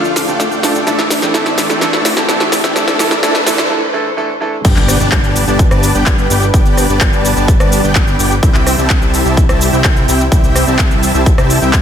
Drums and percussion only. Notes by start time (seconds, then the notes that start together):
0.04 closed hi-hat, shaker
0.16 snare, open hi-hat, shaker
0.28 closed hi-hat, shaker
0.40 snare, closed hi-hat, shaker
0.52 closed hi-hat, shaker
0.63 snare, open hi-hat, shaker
0.75 closed hi-hat, shaker
0.87 snare, closed hi-hat, shaker
0.99 snare, closed hi-hat, shaker
1.10 snare, open hi-hat, shaker
1.22 snare, closed hi-hat, shaker
1.34 snare, closed hi-hat, shaker
1.46 snare, closed hi-hat, shaker
1.58 snare, open hi-hat, shaker
1.70 snare, closed hi-hat, shaker
1.81 snare, closed hi-hat, shaker
1.93 snare, closed hi-hat, shaker
2.05 snare, open hi-hat, shaker
2.17 snare, closed hi-hat, shaker
2.29 snare, closed hi-hat, shaker
2.40 snare, closed hi-hat, shaker
2.52 snare, open hi-hat, shaker
2.64 snare, closed hi-hat, shaker
2.76 snare, closed hi-hat, shaker
2.88 snare, closed hi-hat, shaker
2.99 snare, open hi-hat, shaker
3.11 snare, closed hi-hat, shaker
3.23 snare, closed hi-hat, shaker
3.35 snare, closed hi-hat, shaker
3.46 snare, open hi-hat, shaker
3.58 snare, closed hi-hat, shaker
4.65 kick, closed hi-hat, crash, shaker
4.76 clap, closed hi-hat, shaker
4.88 cross-stick, open hi-hat, shaker
5.00 closed hi-hat, shaker
5.12 kick, clap, closed hi-hat, shaker
5.24 closed hi-hat, shaker
5.36 open hi-hat, shaker
5.47 closed hi-hat, shaker
5.59 kick, closed hi-hat, shaker
5.71 cross-stick, closed hi-hat, shaker
5.83 open hi-hat, shaker
5.95 closed hi-hat, shaker
6.06 kick, clap, closed hi-hat, shaker
6.18 closed hi-hat, shaker
6.30 open hi-hat, shaker
6.42 closed hi-hat, shaker
6.54 kick, closed hi-hat, shaker
6.66 closed hi-hat, shaker
6.77 cross-stick, open hi-hat, shaker
6.89 closed hi-hat, shaker
7.01 kick, clap, closed hi-hat, shaker
7.13 closed hi-hat, shaker
7.25 open hi-hat, shaker
7.37 closed hi-hat, shaker
7.48 kick, closed hi-hat, shaker
7.60 cross-stick, closed hi-hat, shaker
7.72 open hi-hat, shaker
7.84 closed hi-hat, shaker
7.95 kick, clap, closed hi-hat, shaker
8.07 closed hi-hat, shaker
8.19 open hi-hat, shaker
8.31 closed hi-hat, shaker
8.43 kick, closed hi-hat, shaker
8.54 clap, closed hi-hat, shaker
8.67 cross-stick, open hi-hat, shaker
8.78 closed hi-hat, shaker
8.90 kick, clap, closed hi-hat, shaker
9.02 closed hi-hat, shaker
9.14 open hi-hat, shaker
9.26 closed hi-hat, shaker
9.37 kick, closed hi-hat, shaker
9.49 cross-stick, closed hi-hat, shaker
9.61 open hi-hat, shaker
9.73 closed hi-hat, shaker
9.84 kick, clap, closed hi-hat, shaker
9.96 closed hi-hat, shaker
10.08 open hi-hat, shaker
10.20 closed hi-hat, shaker
10.32 kick, closed hi-hat, shaker
10.44 closed hi-hat, shaker
10.55 cross-stick, open hi-hat, shaker
10.67 closed hi-hat, shaker
10.79 kick, clap, closed hi-hat, shaker
10.91 closed hi-hat, shaker
11.03 open hi-hat, shaker
11.14 closed hi-hat, shaker
11.26 kick, closed hi-hat, shaker
11.38 cross-stick, closed hi-hat, shaker
11.50 open hi-hat, shaker
11.62 closed hi-hat, shaker
11.73 kick, clap, closed hi-hat, shaker